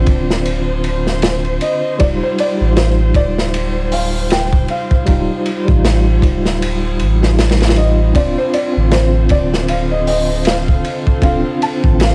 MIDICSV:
0, 0, Header, 1, 7, 480
1, 0, Start_track
1, 0, Tempo, 769231
1, 1246, Time_signature, 4, 2, 24, 8
1, 7581, End_track
2, 0, Start_track
2, 0, Title_t, "Felt piano"
2, 0, Program_c, 0, 0
2, 0, Note_on_c, 0, 74, 100
2, 1010, Note_on_c, 0, 75, 90
2, 1053, Note_off_c, 0, 74, 0
2, 1247, Note_on_c, 0, 74, 86
2, 1255, Note_off_c, 0, 75, 0
2, 1279, Note_off_c, 0, 74, 0
2, 1393, Note_on_c, 0, 72, 88
2, 1484, Note_off_c, 0, 72, 0
2, 1498, Note_on_c, 0, 74, 90
2, 1728, Note_on_c, 0, 72, 83
2, 1739, Note_off_c, 0, 74, 0
2, 1972, Note_on_c, 0, 74, 89
2, 1974, Note_off_c, 0, 72, 0
2, 2452, Note_on_c, 0, 77, 91
2, 2463, Note_off_c, 0, 74, 0
2, 2690, Note_on_c, 0, 79, 107
2, 2696, Note_off_c, 0, 77, 0
2, 2911, Note_off_c, 0, 79, 0
2, 2935, Note_on_c, 0, 77, 87
2, 3386, Note_off_c, 0, 77, 0
2, 4850, Note_on_c, 0, 75, 89
2, 5091, Note_on_c, 0, 74, 80
2, 5095, Note_off_c, 0, 75, 0
2, 5218, Note_off_c, 0, 74, 0
2, 5229, Note_on_c, 0, 72, 80
2, 5328, Note_on_c, 0, 74, 85
2, 5331, Note_off_c, 0, 72, 0
2, 5568, Note_on_c, 0, 72, 84
2, 5574, Note_off_c, 0, 74, 0
2, 5811, Note_on_c, 0, 74, 84
2, 5814, Note_off_c, 0, 72, 0
2, 6048, Note_on_c, 0, 77, 92
2, 6056, Note_off_c, 0, 74, 0
2, 6187, Note_on_c, 0, 75, 81
2, 6190, Note_off_c, 0, 77, 0
2, 6280, Note_off_c, 0, 75, 0
2, 6290, Note_on_c, 0, 75, 86
2, 6511, Note_off_c, 0, 75, 0
2, 6532, Note_on_c, 0, 77, 97
2, 6984, Note_off_c, 0, 77, 0
2, 7012, Note_on_c, 0, 77, 93
2, 7233, Note_off_c, 0, 77, 0
2, 7255, Note_on_c, 0, 81, 86
2, 7498, Note_off_c, 0, 81, 0
2, 7503, Note_on_c, 0, 77, 94
2, 7581, Note_off_c, 0, 77, 0
2, 7581, End_track
3, 0, Start_track
3, 0, Title_t, "Violin section"
3, 0, Program_c, 1, 48
3, 0, Note_on_c, 1, 72, 79
3, 5071, Note_off_c, 1, 72, 0
3, 5078, Note_on_c, 1, 72, 77
3, 7581, Note_off_c, 1, 72, 0
3, 7581, End_track
4, 0, Start_track
4, 0, Title_t, "Synth drone"
4, 0, Program_c, 2, 95
4, 5087, Note_on_c, 2, 69, 91
4, 7581, Note_off_c, 2, 69, 0
4, 7581, End_track
5, 0, Start_track
5, 0, Title_t, "Tine electric piano"
5, 0, Program_c, 3, 4
5, 0, Control_c, 3, 64, 127
5, 0, Note_on_c, 3, 50, 67
5, 0, Note_on_c, 3, 60, 74
5, 0, Note_on_c, 3, 62, 86
5, 0, Note_on_c, 3, 65, 85
5, 1212, Note_off_c, 3, 60, 0
5, 1222, Note_off_c, 3, 50, 0
5, 1231, Note_off_c, 3, 65, 0
5, 1239, Note_on_c, 3, 55, 98
5, 1247, Note_on_c, 3, 63, 91
5, 1254, Control_c, 3, 64, 0
5, 1257, Note_off_c, 3, 62, 0
5, 1257, Note_on_c, 3, 65, 104
5, 1367, Control_c, 3, 64, 127
5, 1588, Note_off_c, 3, 55, 0
5, 1592, Note_off_c, 3, 63, 0
5, 1597, Note_off_c, 3, 65, 0
5, 1608, Note_on_c, 3, 55, 78
5, 1627, Note_on_c, 3, 63, 69
5, 1649, Note_on_c, 3, 65, 82
5, 3133, Note_off_c, 3, 55, 0
5, 3143, Note_off_c, 3, 63, 0
5, 3154, Note_off_c, 3, 65, 0
5, 3155, Note_on_c, 3, 55, 96
5, 3166, Note_on_c, 3, 63, 93
5, 3178, Note_on_c, 3, 65, 101
5, 3506, Note_off_c, 3, 55, 0
5, 3512, Note_off_c, 3, 63, 0
5, 3518, Note_off_c, 3, 65, 0
5, 3526, Note_on_c, 3, 55, 83
5, 3546, Note_on_c, 3, 63, 69
5, 3566, Note_on_c, 3, 65, 92
5, 4468, Note_off_c, 3, 55, 0
5, 4478, Note_off_c, 3, 63, 0
5, 4488, Note_off_c, 3, 65, 0
5, 4497, Note_on_c, 3, 55, 76
5, 4508, Note_on_c, 3, 63, 70
5, 4517, Note_on_c, 3, 65, 84
5, 4818, Note_off_c, 3, 55, 0
5, 4823, Note_off_c, 3, 63, 0
5, 4828, Note_off_c, 3, 65, 0
5, 4839, Note_on_c, 3, 55, 73
5, 4851, Note_on_c, 3, 63, 65
5, 4860, Note_on_c, 3, 65, 84
5, 4920, Note_off_c, 3, 55, 0
5, 4926, Note_off_c, 3, 63, 0
5, 4931, Note_off_c, 3, 65, 0
5, 5077, Note_on_c, 3, 60, 98
5, 5087, Note_on_c, 3, 62, 83
5, 5095, Control_c, 3, 64, 0
5, 5099, Note_on_c, 3, 65, 105
5, 5218, Control_c, 3, 64, 127
5, 5427, Note_off_c, 3, 60, 0
5, 5432, Note_off_c, 3, 62, 0
5, 5438, Note_off_c, 3, 65, 0
5, 5449, Note_on_c, 3, 60, 81
5, 5470, Note_on_c, 3, 50, 71
5, 5488, Note_on_c, 3, 65, 89
5, 6974, Note_off_c, 3, 60, 0
5, 6984, Note_off_c, 3, 50, 0
5, 6993, Note_off_c, 3, 65, 0
5, 7003, Note_on_c, 3, 60, 97
5, 7012, Note_on_c, 3, 62, 92
5, 7021, Note_on_c, 3, 65, 109
5, 7350, Note_off_c, 3, 60, 0
5, 7354, Note_off_c, 3, 62, 0
5, 7359, Note_off_c, 3, 65, 0
5, 7365, Note_on_c, 3, 60, 77
5, 7386, Note_on_c, 3, 50, 73
5, 7408, Note_on_c, 3, 65, 81
5, 7581, Note_off_c, 3, 50, 0
5, 7581, Note_off_c, 3, 60, 0
5, 7581, Note_off_c, 3, 65, 0
5, 7581, End_track
6, 0, Start_track
6, 0, Title_t, "Sub bass"
6, 0, Program_c, 4, 38
6, 44, Note_on_c, 4, 26, 81
6, 986, Note_off_c, 4, 26, 0
6, 1250, Note_on_c, 4, 26, 104
6, 1370, Note_off_c, 4, 26, 0
6, 1624, Note_on_c, 4, 33, 87
6, 1946, Note_off_c, 4, 33, 0
6, 1961, Note_on_c, 4, 26, 86
6, 2904, Note_off_c, 4, 26, 0
6, 3168, Note_on_c, 4, 26, 111
6, 3289, Note_off_c, 4, 26, 0
6, 3546, Note_on_c, 4, 33, 90
6, 3867, Note_off_c, 4, 33, 0
6, 3886, Note_on_c, 4, 26, 80
6, 4366, Note_on_c, 4, 33, 81
6, 4375, Note_off_c, 4, 26, 0
6, 5067, Note_off_c, 4, 33, 0
6, 5085, Note_on_c, 4, 26, 104
6, 5208, Note_off_c, 4, 26, 0
6, 5467, Note_on_c, 4, 33, 89
6, 5788, Note_off_c, 4, 33, 0
6, 5805, Note_on_c, 4, 26, 83
6, 6746, Note_off_c, 4, 26, 0
6, 7001, Note_on_c, 4, 26, 111
6, 7125, Note_off_c, 4, 26, 0
6, 7388, Note_on_c, 4, 33, 89
6, 7581, Note_off_c, 4, 33, 0
6, 7581, End_track
7, 0, Start_track
7, 0, Title_t, "Drums"
7, 39, Note_on_c, 9, 51, 68
7, 43, Note_on_c, 9, 36, 91
7, 102, Note_off_c, 9, 51, 0
7, 106, Note_off_c, 9, 36, 0
7, 189, Note_on_c, 9, 38, 55
7, 252, Note_off_c, 9, 38, 0
7, 284, Note_on_c, 9, 51, 79
7, 346, Note_off_c, 9, 51, 0
7, 523, Note_on_c, 9, 51, 64
7, 585, Note_off_c, 9, 51, 0
7, 666, Note_on_c, 9, 38, 44
7, 729, Note_off_c, 9, 38, 0
7, 762, Note_on_c, 9, 51, 78
7, 769, Note_on_c, 9, 38, 125
7, 824, Note_off_c, 9, 51, 0
7, 831, Note_off_c, 9, 38, 0
7, 902, Note_on_c, 9, 51, 42
7, 965, Note_off_c, 9, 51, 0
7, 1003, Note_on_c, 9, 51, 70
7, 1066, Note_off_c, 9, 51, 0
7, 1246, Note_on_c, 9, 51, 91
7, 1249, Note_on_c, 9, 36, 106
7, 1308, Note_off_c, 9, 51, 0
7, 1311, Note_off_c, 9, 36, 0
7, 1487, Note_on_c, 9, 51, 73
7, 1550, Note_off_c, 9, 51, 0
7, 1726, Note_on_c, 9, 51, 81
7, 1728, Note_on_c, 9, 38, 117
7, 1789, Note_off_c, 9, 51, 0
7, 1790, Note_off_c, 9, 38, 0
7, 1962, Note_on_c, 9, 36, 100
7, 1964, Note_on_c, 9, 51, 66
7, 2025, Note_off_c, 9, 36, 0
7, 2026, Note_off_c, 9, 51, 0
7, 2112, Note_on_c, 9, 38, 51
7, 2174, Note_off_c, 9, 38, 0
7, 2207, Note_on_c, 9, 51, 90
7, 2270, Note_off_c, 9, 51, 0
7, 2444, Note_on_c, 9, 46, 83
7, 2507, Note_off_c, 9, 46, 0
7, 2685, Note_on_c, 9, 51, 84
7, 2694, Note_on_c, 9, 38, 108
7, 2747, Note_off_c, 9, 51, 0
7, 2757, Note_off_c, 9, 38, 0
7, 2824, Note_on_c, 9, 36, 104
7, 2887, Note_off_c, 9, 36, 0
7, 2922, Note_on_c, 9, 51, 63
7, 2984, Note_off_c, 9, 51, 0
7, 3063, Note_on_c, 9, 36, 96
7, 3126, Note_off_c, 9, 36, 0
7, 3160, Note_on_c, 9, 51, 77
7, 3167, Note_on_c, 9, 36, 114
7, 3222, Note_off_c, 9, 51, 0
7, 3230, Note_off_c, 9, 36, 0
7, 3404, Note_on_c, 9, 51, 70
7, 3467, Note_off_c, 9, 51, 0
7, 3545, Note_on_c, 9, 36, 99
7, 3607, Note_off_c, 9, 36, 0
7, 3648, Note_on_c, 9, 38, 101
7, 3651, Note_on_c, 9, 51, 97
7, 3710, Note_off_c, 9, 38, 0
7, 3713, Note_off_c, 9, 51, 0
7, 3883, Note_on_c, 9, 36, 88
7, 3889, Note_on_c, 9, 51, 70
7, 3946, Note_off_c, 9, 36, 0
7, 3951, Note_off_c, 9, 51, 0
7, 4028, Note_on_c, 9, 38, 49
7, 4090, Note_off_c, 9, 38, 0
7, 4132, Note_on_c, 9, 51, 89
7, 4195, Note_off_c, 9, 51, 0
7, 4364, Note_on_c, 9, 51, 61
7, 4427, Note_off_c, 9, 51, 0
7, 4512, Note_on_c, 9, 38, 49
7, 4574, Note_off_c, 9, 38, 0
7, 4608, Note_on_c, 9, 51, 66
7, 4609, Note_on_c, 9, 38, 82
7, 4670, Note_off_c, 9, 51, 0
7, 4671, Note_off_c, 9, 38, 0
7, 4676, Note_on_c, 9, 51, 70
7, 4685, Note_on_c, 9, 38, 84
7, 4738, Note_off_c, 9, 51, 0
7, 4744, Note_on_c, 9, 51, 73
7, 4747, Note_off_c, 9, 38, 0
7, 4754, Note_on_c, 9, 38, 87
7, 4790, Note_off_c, 9, 51, 0
7, 4790, Note_on_c, 9, 51, 66
7, 4799, Note_off_c, 9, 38, 0
7, 4799, Note_on_c, 9, 38, 93
7, 4843, Note_off_c, 9, 51, 0
7, 4843, Note_on_c, 9, 51, 74
7, 4862, Note_off_c, 9, 38, 0
7, 4906, Note_off_c, 9, 51, 0
7, 5085, Note_on_c, 9, 36, 105
7, 5087, Note_on_c, 9, 51, 87
7, 5147, Note_off_c, 9, 36, 0
7, 5150, Note_off_c, 9, 51, 0
7, 5326, Note_on_c, 9, 51, 74
7, 5388, Note_off_c, 9, 51, 0
7, 5562, Note_on_c, 9, 51, 82
7, 5564, Note_on_c, 9, 38, 105
7, 5625, Note_off_c, 9, 51, 0
7, 5627, Note_off_c, 9, 38, 0
7, 5797, Note_on_c, 9, 51, 71
7, 5805, Note_on_c, 9, 36, 96
7, 5860, Note_off_c, 9, 51, 0
7, 5867, Note_off_c, 9, 36, 0
7, 5950, Note_on_c, 9, 38, 52
7, 6013, Note_off_c, 9, 38, 0
7, 6042, Note_on_c, 9, 51, 91
7, 6105, Note_off_c, 9, 51, 0
7, 6285, Note_on_c, 9, 46, 75
7, 6347, Note_off_c, 9, 46, 0
7, 6520, Note_on_c, 9, 51, 85
7, 6534, Note_on_c, 9, 38, 119
7, 6582, Note_off_c, 9, 51, 0
7, 6597, Note_off_c, 9, 38, 0
7, 6666, Note_on_c, 9, 36, 95
7, 6728, Note_off_c, 9, 36, 0
7, 6767, Note_on_c, 9, 51, 73
7, 6829, Note_off_c, 9, 51, 0
7, 6906, Note_on_c, 9, 36, 89
7, 6968, Note_off_c, 9, 36, 0
7, 7000, Note_on_c, 9, 36, 120
7, 7008, Note_on_c, 9, 51, 77
7, 7062, Note_off_c, 9, 36, 0
7, 7071, Note_off_c, 9, 51, 0
7, 7250, Note_on_c, 9, 51, 67
7, 7313, Note_off_c, 9, 51, 0
7, 7387, Note_on_c, 9, 36, 102
7, 7449, Note_off_c, 9, 36, 0
7, 7486, Note_on_c, 9, 51, 84
7, 7495, Note_on_c, 9, 38, 124
7, 7549, Note_off_c, 9, 51, 0
7, 7558, Note_off_c, 9, 38, 0
7, 7581, End_track
0, 0, End_of_file